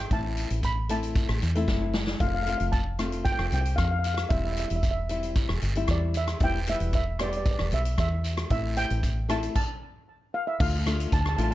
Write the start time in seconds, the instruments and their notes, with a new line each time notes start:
0.11 fingered electric bass A1, nylon-string guitar A3 C4 E4, steel pan A5, kick, closed hi-hat, long guiro
0.37 closed hi-hat
0.50 fingered electric bass A1, closed hi-hat
0.63 steel pan B5, kick, closed hi-hat, short guiro
0.89 nylon-string guitar A3 C4 E4, steel pan A5, closed hi-hat
1.03 closed hi-hat
1.15 kick, closed hi-hat, short guiro, long guiro
1.29 fingered electric bass A1, cross-stick
1.42 fingered electric bass E2, closed hi-hat
1.55 nylon-string guitar A3 C4 E4, closed hi-hat
1.68 fingered electric bass F#1, kick, snare, short guiro
1.94 snare, short guiro
2.07 snare
2.20 fingered electric bass F1, nylon-string guitar A3 C4 F4, steel pan F5, kick, closed hi-hat, long guiro
2.28 steel pan F5
2.34 steel pan F5
2.43 nylon-string guitar A3 C4, steel pan F5, closed hi-hat
2.47 nylon-string guitar F4, steel pan F5
2.58 fingered electric bass F1, steel pan F5, closed hi-hat
2.72 steel pan A5, kick, closed hi-hat, short guiro
2.99 nylon-string guitar A3 C4 F4, cross-stick, closed hi-hat
3.12 closed hi-hat
3.25 steel pan G5, kick, closed hi-hat, short guiro, long guiro
3.32 steel pan G5
3.39 fingered electric bass F1, steel pan G5, cross-stick
3.46 steel pan G5
3.52 fingered electric bass C2, steel pan G5, closed hi-hat
3.61 steel pan G5
3.65 closed hi-hat
3.76 fingered electric bass F2, steel pan F5, kick, cross-stick, closed hi-hat, short guiro
3.84 steel pan F5
3.91 steel pan F5
3.99 steel pan F5
4.04 steel pan F5, closed hi-hat, short guiro
4.15 steel pan F5, cross-stick, closed hi-hat
4.29 fingered electric bass E1, nylon-string guitar G3 C4 E4, steel pan E5, kick, closed hi-hat, long guiro
4.37 steel pan E5
4.45 steel pan E5
4.53 steel pan E5, closed hi-hat
4.60 steel pan E5
4.68 fingered electric bass E1, steel pan E5, closed hi-hat
4.76 steel pan E5
4.83 steel pan E5, kick, closed hi-hat, short guiro
4.91 steel pan E5
5.09 nylon-string guitar G3 C4 E4, closed hi-hat
5.23 closed hi-hat
5.36 kick, closed hi-hat, short guiro, long guiro
5.49 fingered electric bass E1, cross-stick
5.62 fingered electric bass G1, closed hi-hat
5.75 nylon-string guitar G3 C4 E4, closed hi-hat
5.88 fingered electric bass E2, steel pan D5, kick, cross-stick, closed hi-hat, short guiro
6.14 steel pan E5, closed hi-hat, short guiro
6.28 cross-stick, closed hi-hat
6.40 fingered electric bass E1, nylon-string guitar G3 B3 E4, steel pan G5, kick, closed hi-hat, long guiro
6.67 nylon-string guitar G3 B3 E4, steel pan E5, closed hi-hat
6.80 fingered electric bass E1, closed hi-hat
6.93 steel pan E5, kick, closed hi-hat, short guiro
7.19 nylon-string guitar G3 B3 G4, steel pan D5, cross-stick, closed hi-hat
7.30 steel pan D5, closed hi-hat
7.37 steel pan D5
7.45 steel pan D5, kick, closed hi-hat, short guiro, long guiro
7.51 steel pan D5
7.59 fingered electric bass E1, steel pan D5, cross-stick
7.72 fingered electric bass B1, steel pan E5, closed hi-hat
7.85 closed hi-hat
7.98 fingered electric bass E2, steel pan E5, kick, cross-stick, closed hi-hat, short guiro
8.24 closed hi-hat, short guiro
8.37 cross-stick, closed hi-hat
8.50 fingered electric bass A1, nylon-string guitar A3 C4 E4, steel pan E5, kick, closed hi-hat, long guiro
8.77 steel pan G5, closed hi-hat
8.90 fingered electric bass A1, closed hi-hat
9.03 kick, closed hi-hat, short guiro
9.29 nylon-string guitar A3 C4 E4, steel pan A5, cross-stick, closed hi-hat
9.43 closed hi-hat
9.55 steel pan A5, kick, crash
10.34 steel pan F5
10.47 steel pan E5
10.60 fingered electric bass D2, nylon-string guitar A3 D4 F4, steel pan F5, kick, crash, long guiro
10.86 nylon-string guitar A3 D4 F4, cross-stick, closed hi-hat, short guiro
11.00 closed hi-hat
11.12 fingered electric bass D2, steel pan A5, kick, closed hi-hat, short guiro
11.21 steel pan A5
11.26 steel pan A5, cross-stick
11.37 fingered electric bass A1, nylon-string guitar A3 D4 F4, steel pan A5, closed hi-hat
11.44 steel pan A5